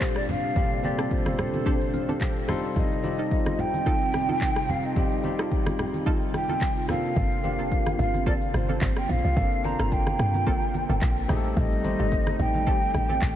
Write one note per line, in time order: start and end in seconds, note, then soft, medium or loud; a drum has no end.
0.00 0.55 A#2 medium
0.00 2.45 C3 medium
0.00 0.55 G3 medium
0.00 0.56 C4 medium
0.00 13.36 C4 medium
0.00 0.56 D4 medium
0.00 2.45 D4 medium
0.00 0.57 F4 medium
0.00 0.54 G4 medium
0.00 0.57 G4 medium
0.00 2.50 A4 medium
0.00 0.18 C5 medium
0.00 kick medium
0.00 clap medium
0.00 downlifter medium
0.00 shaker medium
0.16 0.28 D5 medium
0.16 cross-stick medium
0.16 shaker soft
0.29 0.86 F5 loud
0.29 high conga medium
0.29 low conga medium
0.29 shaker loud
0.44 shaker medium
0.55 0.78 A#2 medium
0.55 0.78 G3 medium
0.55 0.78 C4 medium
0.55 0.79 D4 medium
0.55 0.79 F4 medium
0.55 0.79 G4 medium
0.55 2.47 A4 medium
0.55 kick loud
0.55 low conga medium
0.55 shaker medium
0.71 shaker soft
0.82 1.72 A#2 medium
0.82 1.72 G3 medium
0.82 1.72 C4 medium
0.82 1.72 D4 medium
0.82 1.72 F4 medium
0.82 1.73 G4 medium
0.82 1.11 D5 medium
0.82 high conga medium
0.82 shaker medium
0.98 1.10 C4 medium
0.98 1.10 D4 medium
0.98 1.10 G4 medium
0.98 1.10 A4 medium
0.98 cross-stick loud
0.98 shaker medium
1.11 2.45 C5 medium
1.11 kick medium
1.11 shaker medium
1.26 cross-stick medium
1.26 high conga medium
1.26 shaker medium
1.38 cross-stick loud
1.38 low conga medium
1.38 shaker medium
1.54 high conga medium
1.54 shaker medium
1.66 1.80 C4 medium
1.66 1.80 D4 medium
1.66 1.80 G4 medium
1.66 1.80 A4 loud
1.66 kick loud
1.66 shaker medium
1.81 shaker soft
1.94 2.19 F5 medium
1.94 high conga medium
1.94 shaker loud
2.08 2.20 C4 medium
2.08 2.20 D4 medium
2.08 2.20 G4 medium
2.08 2.20 A4 medium
2.08 high conga medium
2.08 shaker medium
2.21 2.47 G5 medium
2.21 kick medium
2.21 clap medium
2.21 shaker medium
2.36 shaker medium
2.48 13.36 C3 medium
2.48 2.93 G3 loud
2.48 2.94 C4 medium
2.48 6.85 D#4 medium
2.48 2.94 D#4 medium
2.48 11.25 F4 medium
2.48 2.94 F4 medium
2.48 2.94 A4 loud
2.48 2.74 C6 medium
2.48 cross-stick loud
2.48 high conga medium
2.48 low conga medium
2.48 shaker loud
2.64 shaker medium
2.76 3.61 D#5 loud
2.76 kick loud
2.76 low conga medium
2.76 shaker medium
2.91 shaker soft
3.03 3.92 G3 medium
3.03 3.92 C4 medium
3.03 3.92 D#4 medium
3.03 3.93 F4 medium
3.03 3.93 G4 medium
3.03 high conga medium
3.03 shaker medium
3.18 3.30 D#4 medium
3.18 3.30 F4 medium
3.18 3.31 A4 medium
3.18 shaker medium
3.31 kick loud
3.31 shaker medium
3.46 cross-stick medium
3.46 high conga medium
3.46 shaker medium
3.59 4.71 G5 loud
3.59 low conga medium
3.59 shaker medium
3.74 high conga medium
3.74 shaker medium
3.86 4.00 D#4 medium
3.86 4.00 F4 medium
3.86 4.01 A4 loud
3.86 kick loud
3.86 shaker medium
4.01 shaker soft
4.14 cross-stick medium
4.14 high conga medium
4.14 shaker loud
4.29 4.40 D#4 medium
4.29 4.41 F4 medium
4.29 4.41 A4 medium
4.29 high conga medium
4.29 shaker medium
4.41 kick medium
4.41 clap medium
4.41 shaker medium
4.56 cross-stick medium
4.56 shaker soft
4.69 4.86 F5 medium
4.69 high conga medium
4.69 low conga medium
4.69 shaker loud
4.84 5.39 D#5 medium
4.84 shaker medium
4.95 5.18 G3 medium
4.95 5.19 C4 medium
4.95 5.19 D#4 medium
4.95 5.19 F4 medium
4.95 5.19 G4 medium
4.95 kick loud
4.95 low conga medium
4.95 shaker medium
5.11 shaker soft
5.23 6.12 G3 medium
5.23 6.12 C4 medium
5.23 6.12 D#4 medium
5.23 6.13 F4 medium
5.23 6.13 G4 medium
5.23 high conga medium
5.23 shaker medium
5.38 5.50 D#4 medium
5.38 5.51 F4 medium
5.38 5.51 A4 medium
5.38 cross-stick loud
5.38 shaker medium
5.51 kick loud
5.51 shaker medium
5.66 cross-stick loud
5.66 high conga medium
5.66 shaker medium
5.79 cross-stick loud
5.79 low conga medium
5.79 shaker medium
5.94 high conga medium
5.94 shaker medium
6.06 6.20 D#4 medium
6.06 6.21 F4 medium
6.06 6.21 A4 loud
6.06 kick loud
6.06 shaker medium
6.21 shaker soft
6.34 6.85 G5 loud
6.34 cross-stick medium
6.34 high conga medium
6.34 shaker loud
6.49 6.60 D#4 medium
6.49 6.61 F4 medium
6.49 6.61 A4 medium
6.49 high conga medium
6.49 shaker medium
6.61 kick medium
6.61 clap medium
6.61 shaker medium
6.77 shaker medium
6.88 7.34 A#3 medium
6.88 11.25 A#3 medium
6.88 7.34 C4 medium
6.88 7.34 D4 medium
6.88 7.34 F4 medium
6.88 7.35 A4 medium
6.88 7.95 F5 loud
6.88 cross-stick medium
6.88 high conga medium
6.88 low conga medium
6.88 shaker loud
7.04 shaker medium
7.16 7.61 G1 loud
7.16 kick loud
7.16 low conga medium
7.16 shaker medium
7.31 shaker medium
7.43 8.32 A#3 medium
7.43 8.32 C4 medium
7.43 8.33 D4 medium
7.43 8.33 F4 medium
7.43 8.33 G4 medium
7.43 high conga medium
7.43 shaker medium
7.58 7.95 F1 medium
7.58 7.71 A#3 medium
7.58 7.71 C4 medium
7.58 7.71 F4 medium
7.58 7.71 A4 medium
7.58 shaker medium
7.71 kick medium
7.71 shaker medium
7.86 cross-stick medium
7.86 high conga medium
7.86 shaker medium
7.99 8.48 G1 loud
7.99 8.25 F5 medium
7.99 low conga medium
7.99 shaker medium
8.14 high conga medium
8.14 shaker medium
8.26 8.41 A#3 loud
8.26 8.41 C4 medium
8.26 8.41 F4 medium
8.26 8.41 A4 loud
8.26 8.33 D5 medium
8.26 kick loud
8.26 shaker medium
8.41 shaker soft
8.54 8.79 G1 medium
8.54 8.98 C5 medium
8.54 cross-stick medium
8.54 high conga medium
8.54 shaker loud
8.69 8.81 A#3 medium
8.69 8.81 C4 medium
8.69 8.81 F4 medium
8.69 8.81 A4 medium
8.69 high conga medium
8.69 shaker medium
8.81 9.06 G1 loud
8.81 kick medium
8.81 clap medium
8.81 shaker medium
8.96 9.11 G5 medium
8.96 cross-stick medium
8.96 shaker soft
9.09 9.23 A#1 medium
9.09 9.66 F5 loud
9.09 high conga medium
9.09 low conga medium
9.09 shaker loud
9.24 9.35 C2 medium
9.24 shaker medium
9.36 9.75 G1 loud
9.36 9.59 A#3 medium
9.36 9.59 C4 medium
9.36 9.59 D4 medium
9.36 9.60 F4 medium
9.36 9.60 A4 medium
9.36 kick loud
9.36 low conga medium
9.36 shaker medium
9.52 shaker soft
9.63 10.52 A#3 medium
9.63 10.53 C4 medium
9.63 10.53 D4 medium
9.63 10.53 F4 medium
9.63 10.53 C5 medium
9.63 9.93 A#5 loud
9.63 high conga medium
9.63 shaker medium
9.79 10.15 G1 medium
9.79 9.91 A#3 medium
9.79 9.91 C4 medium
9.79 9.91 F4 medium
9.79 9.91 A4 medium
9.79 cross-stick loud
9.79 shaker medium
9.92 11.29 G5 loud
9.92 kick medium
9.92 shaker medium
10.07 cross-stick medium
10.07 high conga medium
10.07 shaker medium
10.19 10.48 G2 loud
10.19 cross-stick loud
10.19 low conga medium
10.19 shaker medium
10.34 high conga medium
10.34 shaker medium
10.46 10.85 G1 medium
10.46 10.61 A#3 loud
10.46 10.61 C4 medium
10.46 10.61 F4 medium
10.46 10.61 A4 loud
10.46 kick loud
10.46 shaker medium
10.62 shaker soft
10.74 high conga medium
10.74 shaker loud
10.89 11.01 G1 medium
10.89 11.01 A#3 medium
10.89 11.01 C4 medium
10.89 11.01 F4 medium
10.89 11.01 A4 medium
10.89 high conga medium
10.89 shaker medium
11.01 11.27 A#1 loud
11.01 kick medium
11.01 clap medium
11.01 shaker medium
11.17 shaker medium
11.28 11.54 A1 medium
11.28 13.36 G3 medium
11.28 11.74 A3 loud
11.28 11.74 C4 medium
11.28 11.74 D#4 medium
11.28 13.36 D#4 medium
11.28 11.75 G4 medium
11.28 11.37 G#4 medium
11.28 cross-stick medium
11.28 high conga medium
11.28 low conga medium
11.28 shaker loud
11.37 11.78 A4 loud
11.45 shaker medium
11.57 11.95 A1 loud
11.57 12.36 D#5 loud
11.57 kick loud
11.57 riser medium
11.57 low conga medium
11.57 shaker medium
11.72 shaker medium
11.83 12.72 A3 medium
11.83 12.73 C4 medium
11.83 12.73 D#4 medium
11.83 12.73 G4 medium
11.83 12.74 C5 medium
11.83 high conga medium
11.83 shaker medium
11.99 12.35 G1 medium
11.99 12.11 C4 medium
11.99 12.11 G4 medium
11.99 12.11 A4 medium
11.99 shaker medium
12.12 kick medium
12.12 shaker medium
12.27 cross-stick medium
12.27 high conga medium
12.27 shaker medium
12.39 12.89 A1 loud
12.39 13.36 G5 loud
12.39 low conga medium
12.39 shaker medium
12.54 high conga medium
12.54 shaker medium
12.67 12.81 C4 loud
12.67 12.81 G4 medium
12.67 12.81 A4 loud
12.67 kick loud
12.67 shaker medium
12.82 shaker soft
12.94 13.19 A1 medium
12.94 cross-stick medium
12.94 high conga medium
12.94 shaker medium
13.09 13.21 C4 medium
13.09 13.21 G4 medium
13.09 13.21 A4 medium
13.09 high conga medium
13.09 shaker medium
13.22 13.36 A1 medium
13.22 kick medium
13.22 clap medium
13.22 shaker medium